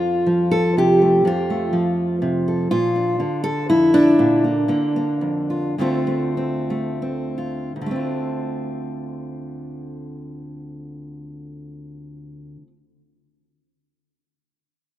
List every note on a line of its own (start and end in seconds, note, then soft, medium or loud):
0.00 1.23 F2 medium
0.00 1.01 F4 medium
0.26 1.72 F3 medium
0.51 0.76 A4 loud
0.77 1.23 C3 medium
0.77 1.75 G4 loud
1.02 1.23 A3 soft
1.25 2.68 F2 medium
1.25 2.70 F4 medium
1.50 2.69 A3 soft
1.73 3.19 F3 medium
2.22 2.68 C3 medium
2.48 2.69 A4 medium
2.71 3.20 A#2 medium
2.71 3.43 F4 loud
2.96 3.94 D4 soft
3.20 4.67 D3 medium
3.44 3.68 A4 loud
3.69 4.15 F2 medium
3.69 4.43 E4 loud
3.94 5.77 D4 medium
4.19 4.68 A#2 medium
4.44 4.68 A#3 soft
4.68 5.78 D3 medium
4.68 4.94 A#3 medium
4.96 5.74 A#3 soft
5.21 5.73 F2 medium
5.50 5.74 F4 medium
5.78 7.75 D2 medium
5.78 7.80 D3 medium
5.78 6.06 A3 medium
5.78 6.36 C4 medium
5.78 7.37 F4 medium
6.07 6.68 A3 soft
6.37 7.01 C4 medium
6.70 7.72 A3 soft
7.02 7.71 C4 soft
7.38 7.71 F4 soft
7.76 12.56 D2 medium
7.81 12.62 D3 medium
7.86 12.67 A3 medium
7.91 12.72 C4 medium
7.96 12.76 F4 soft